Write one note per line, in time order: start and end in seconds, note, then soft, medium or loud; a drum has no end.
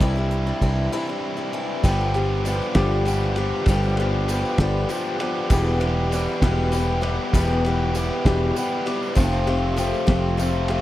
0.00 0.52 C2 medium
0.00 0.16 C3 medium
0.00 0.17 E3 medium
0.00 0.17 G3 medium
0.00 0.93 C4 medium
0.00 0.16 D4 medium
0.00 0.14 E4 loud
0.00 kick loud
0.00 closed hi-hat medium
0.16 0.47 G3 soft
0.16 0.46 D4 medium
0.16 0.45 E4 medium
0.31 closed hi-hat medium
0.47 0.61 G3 soft
0.47 0.62 D4 soft
0.47 0.62 E4 medium
0.61 0.88 C2 medium
0.61 0.92 E3 medium
0.61 0.92 G3 medium
0.61 0.92 D4 medium
0.61 0.93 E4 medium
0.61 kick medium
0.61 closed hi-hat medium
0.92 1.08 C3 medium
0.92 1.08 E3 medium
0.92 1.08 G3 medium
0.92 1.83 C4 medium
0.92 1.08 D4 loud
0.92 1.06 E4 loud
0.97 1.85 C3 medium
1.09 1.37 G3 soft
1.09 1.36 D4 medium
1.37 1.53 G3 soft
1.37 1.53 D4 medium
1.37 1.53 E4 medium
1.53 1.84 E3 medium
1.53 1.83 G3 medium
1.53 1.85 D4 medium
1.53 1.84 E4 medium
1.83 2.60 G1 loud
1.83 2.15 G2 medium
1.83 2.15 D3 medium
1.83 2.15 F3 medium
1.83 2.15 G3 loud
1.83 2.14 B3 medium
1.83 5.47 D4 medium
1.83 5.47 F4 medium
1.83 2.14 G4 loud
1.83 5.48 G4 medium
1.83 5.47 B4 medium
1.83 kick loud
1.83 crash loud
1.83 tambourine medium
2.00 tambourine soft
2.14 2.44 F3 medium
2.14 2.44 G3 medium
2.14 2.45 B3 medium
2.14 2.46 G4 medium
2.14 ride medium
2.45 2.75 F3 medium
2.45 2.74 G3 medium
2.45 2.74 B3 medium
2.45 2.74 G4 medium
2.45 ride medium
2.45 tambourine medium
2.61 tambourine soft
2.75 3.52 G1 loud
2.75 3.07 G2 medium
2.75 3.07 D3 medium
2.75 3.05 F3 medium
2.75 3.05 G3 medium
2.75 3.06 B3 medium
2.75 3.06 G4 medium
2.75 kick medium
2.75 snare loud
2.75 ride loud
2.75 tambourine soft
3.05 3.37 F3 medium
3.05 3.37 G3 medium
3.05 3.36 B3 medium
3.05 3.36 G4 medium
3.05 ride medium
3.05 tambourine medium
3.36 3.68 F3 soft
3.36 3.68 G3 medium
3.36 3.68 B3 medium
3.36 3.68 G4 medium
3.36 ride medium
3.66 4.43 G1 loud
3.66 3.99 G2 medium
3.66 3.99 D3 loud
3.66 3.99 F3 medium
3.66 3.99 G3 loud
3.66 3.98 B3 medium
3.66 3.99 G4 medium
3.66 kick loud
3.66 ride loud
3.66 tambourine medium
3.83 tambourine soft
3.97 4.28 G3 medium
3.97 4.29 B3 medium
3.97 4.29 G4 medium
3.97 ride medium
4.01 4.28 F3 soft
4.28 4.60 F3 medium
4.28 4.59 G3 medium
4.28 4.59 B3 medium
4.28 4.59 G4 medium
4.28 ride medium
4.28 tambourine loud
4.45 tambourine soft
4.58 4.84 G1 loud
4.58 4.91 G2 medium
4.58 4.91 D3 medium
4.58 4.88 F3 medium
4.58 4.88 G3 medium
4.58 4.89 B3 medium
4.58 4.89 G4 medium
4.58 kick medium
4.58 snare loud
4.58 ride loud
4.58 tambourine soft
4.89 5.20 F3 medium
4.89 5.20 G3 medium
4.89 5.19 B3 medium
4.89 5.18 G4 medium
4.89 ride medium
4.89 tambourine medium
5.20 5.50 F3 medium
5.20 5.49 G3 soft
5.20 5.50 B3 medium
5.20 5.50 G4 medium
5.20 ride medium
5.50 6.26 E1 medium
5.50 5.81 E2 medium
5.50 5.81 B2 loud
5.50 5.81 E3 loud
5.50 5.80 G3 medium
5.50 5.80 B3 loud
5.50 9.14 B3 medium
5.50 9.13 E4 medium
5.50 5.79 G4 loud
5.50 9.14 G4 medium
5.50 9.14 B4 medium
5.50 kick loud
5.50 ride loud
5.50 tambourine medium
5.80 6.11 E3 medium
5.80 6.12 G3 medium
5.80 6.12 B3 medium
5.80 6.12 G4 medium
5.80 ride medium
6.12 6.42 E3 medium
6.12 6.42 G3 medium
6.12 6.41 B3 medium
6.12 6.42 G4 medium
6.12 ride medium
6.12 tambourine medium
6.42 7.18 E1 medium
6.42 6.74 E2 medium
6.42 6.74 B2 medium
6.42 6.70 E3 medium
6.42 6.71 G3 medium
6.42 6.73 B3 medium
6.42 6.73 G4 medium
6.42 kick medium
6.42 snare loud
6.42 ride medium
6.42 tambourine soft
6.72 7.02 E3 medium
6.72 7.01 G3 medium
6.72 7.01 B3 medium
6.72 7.00 G4 medium
6.72 ride medium
6.72 tambourine medium
7.01 7.33 E3 medium
7.01 7.34 G3 medium
7.01 7.33 B3 medium
7.01 7.33 G4 medium
7.01 ride medium
7.33 8.09 E1 medium
7.33 7.65 E2 medium
7.33 7.65 B2 medium
7.33 7.65 E3 medium
7.33 7.65 G3 loud
7.33 7.65 B3 loud
7.33 7.65 G4 loud
7.33 kick loud
7.33 ride loud
7.33 tambourine medium
7.65 7.94 E3 medium
7.65 7.94 G3 medium
7.65 7.95 B3 medium
7.65 7.96 G4 medium
7.65 ride medium
7.95 8.25 E3 medium
7.95 8.25 G3 medium
7.95 8.25 B3 medium
7.95 8.25 G4 medium
7.95 ride medium
7.95 tambourine medium
8.25 8.51 E1 medium
8.25 8.57 E2 medium
8.25 8.57 B2 medium
8.25 8.55 E3 medium
8.25 8.56 G3 medium
8.25 8.56 B3 medium
8.25 8.57 G4 medium
8.25 kick medium
8.25 snare loud
8.25 ride medium
8.56 8.86 E3 medium
8.56 8.86 G3 medium
8.56 8.85 B3 medium
8.56 8.85 G4 medium
8.56 ride medium
8.56 tambourine loud
8.86 9.15 E3 soft
8.86 9.16 G3 soft
8.86 9.16 B3 medium
8.86 9.16 G4 medium
8.86 ride medium
8.86 tambourine soft
9.03 tambourine soft
9.15 9.92 F1 medium
9.15 10.81 F2 loud
9.15 9.78 C3 loud
9.15 9.47 F3 medium
9.15 9.47 A3 medium
9.15 9.47 C4 medium
9.15 10.81 C4 medium
9.15 10.81 F4 medium
9.15 9.47 F4 loud
9.15 9.46 G4 medium
9.15 10.81 G4 medium
9.15 10.81 A4 medium
9.15 kick loud
9.15 tambourine loud
9.15 crash loud
9.33 tambourine soft
9.47 9.77 F3 medium
9.47 9.75 A3 medium
9.47 9.77 C4 medium
9.47 9.80 F4 medium
9.47 9.77 G4 medium
9.47 ride medium
9.76 10.07 F3 medium
9.76 10.07 A3 medium
9.76 10.06 C4 medium
9.76 10.07 F4 medium
9.76 10.05 G4 medium
9.76 ride medium
9.76 tambourine loud
9.94 tambourine soft
10.07 10.81 F1 loud
10.07 10.36 F3 medium
10.07 10.38 A3 medium
10.07 10.38 C4 medium
10.07 10.41 F4 medium
10.07 10.38 G4 medium
10.07 kick medium
10.07 snare medium
10.07 ride loud
10.07 tambourine soft
10.37 10.69 F3 medium
10.37 10.69 A3 medium
10.37 10.69 C4 medium
10.37 10.68 G4 medium
10.37 ride medium
10.37 tambourine loud
10.42 10.69 F4 medium
10.68 10.81 A3 soft
10.68 10.81 C4 medium
10.68 10.81 F4 medium
10.68 10.81 G4 medium
10.68 ride medium
10.72 10.81 F3 medium